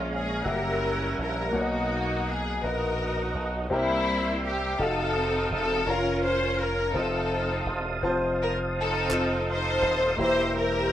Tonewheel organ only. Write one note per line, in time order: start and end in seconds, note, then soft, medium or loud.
0.00 0.44 G#4 medium
0.00 0.44 C#5 soft
0.00 0.43 F5 soft
0.00 1.51 A#5 medium
0.44 1.52 G3 medium
0.44 1.52 E5 medium
0.44 3.66 F#5 soft
1.55 3.69 D#5 medium
3.72 4.78 E5 medium
3.72 4.78 G5 medium
3.72 4.79 C6 medium
4.79 5.86 F#4 medium
4.79 5.86 A4 medium
4.79 10.15 F5 soft
4.79 5.86 D#6 medium
5.87 6.94 C#4 soft
5.87 6.94 A#4 medium
6.96 10.92 C5 medium
6.96 10.15 A5 medium
6.96 10.15 D#6 medium
10.18 10.92 G5 soft
10.18 10.92 A#5 medium
10.18 10.92 E6 medium